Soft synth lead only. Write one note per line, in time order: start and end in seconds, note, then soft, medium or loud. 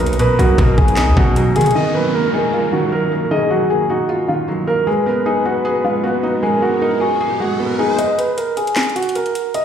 0.00 0.16 B4 loud
0.20 0.93 A#4 loud
1.56 1.74 G#4 medium
1.75 3.27 A#4 loud
3.31 4.05 G#4 loud
4.68 4.86 A#4 medium
4.87 6.39 B4 loud
6.42 7.16 A#4 loud
7.79 7.98 G#4 medium